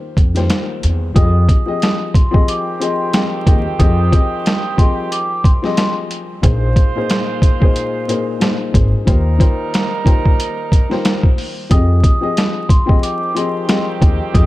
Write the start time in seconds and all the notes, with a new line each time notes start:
Already playing: D#3 A#3 F4 G4 C5
0.17 F2, kick, closed hi-hat
0.35 D#3 A#3 F4 G4 C5, snare, closed hi-hat
0.50 snare, closed hi-hat
0.83 E2, closed hi-hat
1.14 F2 F3 C4 G4 G#4 D#5 D#6, kick, closed hi-hat
1.49 kick, closed hi-hat
1.66 F3 C4 G4 G#4 D#5
1.82 snare, closed hi-hat
2.14 C6, kick, closed hi-hat
2.31 F3 C4 G4 G#4 D#5, kick
2.47 D#3 C4 G4 D6, closed hi-hat
2.80 F3 C4 G4 G#4 D#5 C6, closed hi-hat
3.13 F3 C4 G4 G#4 D#5, snare, closed hi-hat
3.46 D#2 F3 C4 G4 G#4 D#5, kick, closed hi-hat
3.79 F2 F3 C4 G4 G#4 D#5 D#6, kick, closed hi-hat
4.11 F3 C4 G4 G#4 D#5, kick, closed hi-hat
4.46 snare, closed hi-hat
4.77 F3 C4 G4 G#4 D#5 C6, kick, closed hi-hat
5.12 D6, closed hi-hat
5.44 C6, kick, closed hi-hat
5.62 F3 C4 G4 G#4 D#5, snare
5.77 snare, closed hi-hat
6.11 closed hi-hat
6.42 A#1 A#2 G#3 A#3 D#4 F4 G#4 C5, kick, closed hi-hat
6.76 kick, closed hi-hat
6.95 A#2 A#3 D#4 G#4 C5
7.10 snare, closed hi-hat
7.42 kick, closed hi-hat
7.60 A#2 A#3 D#4 G#4 C5, kick
7.76 closed hi-hat
8.08 A#2 A#3 D#4 G#4 C5, closed hi-hat
8.39 A#2 A#3 D#4 G#4 C5, snare, closed hi-hat
8.72 G#1 A#2 A#3 D#4 G#4 C5, kick, closed hi-hat
9.05 D#2 D#3 G3 A#3 D#4 F4 G4 A#4 C5, kick, closed hi-hat
9.38 D#3 A#3 F4 G4 C5, kick, closed hi-hat
9.74 snare, closed hi-hat
10.04 D#3 A#3 F4 G4 C5, kick, closed hi-hat
10.26 kick
10.40 closed hi-hat
10.72 kick, closed hi-hat
10.89 D#3 A#3 F4 G4 C5, snare
11.05 snare, closed hi-hat
11.23 kick
11.38 open hi-hat
11.69 F2 F3 C4 G4 G#4 D#5 D#6, kick, closed hi-hat
12.04 kick, closed hi-hat
12.21 F3 C4 G4 G#4 D#5
12.37 snare, closed hi-hat
12.69 C6, kick, closed hi-hat
12.86 F3 C4 G4 G#4 D#5, kick
13.02 D#3 C4 G4 D6, closed hi-hat
13.35 F3 C4 G4 G#4 D#5 C6, closed hi-hat
13.67 F3 C4 G4 G#4 D#5, snare, closed hi-hat
14.01 D#2 F3 C4 G4 G#4 D#5, kick, closed hi-hat
14.33 F2 F3 C4 G4 G#4 D#5 D#6, kick, closed hi-hat